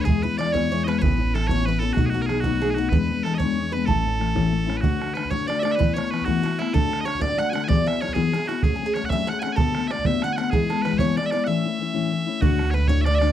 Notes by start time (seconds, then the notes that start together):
0.01 G#4 C#5
0.06 E2 E3 G#3 B3 E4, bodhran
0.23 B3 E4 B4, bodhran
0.28 G#3
0.37 E3 G#3 B3 D5, bodhran
0.41 E4
0.52 G#3 B3 E4 C#5, bodhran
0.56 E3
0.69 E3 G#3 B3 E4 C#5
0.84 B3 E4 B4 D#5
0.88 G#3, bodhran
0.99 A1 A2 E3 B3 B4 C#5
1.03 C#4 E4, bodhran
1.18 B3 C#4 E4, bodhran
1.33 E3 B3 C#4 E4 A4, bodhran
1.47 E3 B3 C#4 E4 C#5, bodhran
1.52 A2
1.66 E3 B3 C#4 E4 B4
1.79 B3 C#4 E4 A4
1.93 B1 B2 F#4 G#4
1.97 F#3 A3 B3 D#4 F#4, bodhran
2.06 F#4 G#4
2.14 A3 B3 D#4 F#4, bodhran
2.22 A#4
2.26 F#3 G#4, bodhran
2.31 A3 B3 D#4
2.40 F#4, bodhran
2.45 B2 F#3 A3 B3 D#4
2.62 F#3 A3 B3 D#4 G#4
2.70 F#4 G#4
2.76 A3 B3 D#4 F#4
2.89 E2 E3 G#3 B3 D4 B4, bodhran
3.10 G#3 B3 D4, bodhran
3.23 E3 G#3 B3 A4, bodhran
3.28 D4
3.34 C#5 D#5
3.40 G#3 B3 D4 C#5, bodhran
3.44 E3
3.58 E3 G#3 B3 D4
3.72 B3 D4 B4
3.76 G#3
3.86 A1 A2 E3 A3 C#4 E4 A4, bodhran
4.06 A3 C#4 E4, bodhran
4.19 E3 A3 C#4 E4, bodhran
4.35 A2 E3 A3 C#4 E4, bodhran
4.50 E3 A3 C#4 E4
4.67 A3 C#4 E4, bodhran
4.77 F#4 B4
4.81 D2 A2 D3 A3 D4 F#4, bodhran
5.00 D3 A3 D4 F#4, bodhran
5.14 D3 B4, bodhran
5.18 A3 D4 F#4
5.25 bodhran
5.31 D2 A2 D3 A3 D4 F#4 C#5, bodhran
5.47 D3 A3 D4 F#4 D5, bodhran
5.60 F#4 D5 E5
5.64 D3 A3 D4, bodhran
5.72 B4 E5
5.78 E3 A3 B3 E4 B4, bodhran
5.94 E4 C#5
5.98 A3 B3, bodhran
6.11 E3 A3 B3 E4 B4, bodhran
6.21 F#4, bodhran
6.25 E3 A3 B3 E4 F#4, bodhran
6.43 E3 A3 B3 E4 F#4, bodhran
6.58 A3 B3 E4, bodhran
6.73 D2 A2 D3 A3 D4 F#4 A4, bodhran
6.89 D3 A3 D4 F#4
6.93 bodhran
7.00 D3 D#5
7.05 A3 D4 F#4 C#5, bodhran
7.15 bodhran
7.19 D2 A2 D3 A3 D4 F#4 D5, bodhran
7.37 D3 A3 D4 F#4 F#5, bodhran
7.50 A3 F#4 F#5 G#5
7.54 D3 D4, bodhran
7.64 E3 F#3 D5 G#5
7.68 B3 E4 G#4 D5, bodhran
7.86 B3 E4 G#4 E5, bodhran
8.01 F#3 B3 E4 G#4 C#5, bodhran
8.09 bodhran
8.14 E3 F#3 B3 E4 G#4, bodhran
8.32 F#3 B3 E4 G#4, bodhran
8.45 F#4 G#4, bodhran
8.50 B3 E4
8.63 F#3 A3 C#4 G#4, bodhran
8.76 G#4
8.81 A3 C#4
8.86 G#4
8.94 F#3 A3 C#4 C#5, bodhran
8.98 G#4
9.03 F#5, bodhran
9.09 F#3 A3 C#4 G#4 E5, bodhran
9.27 F#3 A3 C#4 G#4 F#5, bodhran
9.40 G#4 F#5 G#5, bodhran
9.44 A3 C#4
9.53 A4 G#5
9.58 D2 A2 D3 A3 B3 F#4, bodhran
9.75 D3 A3 B3 F#4, bodhran
9.88 D3 B3 D5 E5, bodhran
9.92 A3 F#4
9.99 bodhran
10.05 D2 A2 D3 A3 B3 F#4 E5, bodhran
10.22 D3 A3 B3 F#4 F#5, bodhran
10.33 F#5 G#5
10.38 D3 A3 B3 F#4 F#5, bodhran
10.50 E3 G#3 B3 E4 G#4, bodhran
10.70 G#3 B3 E4 A4, bodhran
10.82 E3 B4, bodhran
10.86 G#3 B3 E4
10.93 bodhran
10.98 E3 G#3 B3 E4 C#5, bodhran
11.17 E3 G#3 B3 D5, bodhran
11.21 E4
11.26 E5
11.31 E4 D5, bodhran
11.35 G#3 B3
11.44 A2 E3 E5 F#5
11.49 A3 C#4 E4
11.65 A3 C#4 E4
11.79 E3 A3 C#4 E4
11.93 A2 E3 A3 C#4 E4
12.10 E3 A3 C#4 E4
12.27 A3 C#4 E4
12.40 D2 A2 D3 A3 D4 F#4, bodhran
12.59 D3 A3 D4 F#4, bodhran
12.71 D3 B4 C#5, bodhran
12.75 A3 D4 F#4
12.80 bodhran
12.88 D2 A2 D3 A3 D4 F#4 C#5, bodhran
13.01 D3 D5 E5
13.06 A3 D5, bodhran
13.15 D5 E5
13.20 D3 A3 D4 F#4 D5, bodhran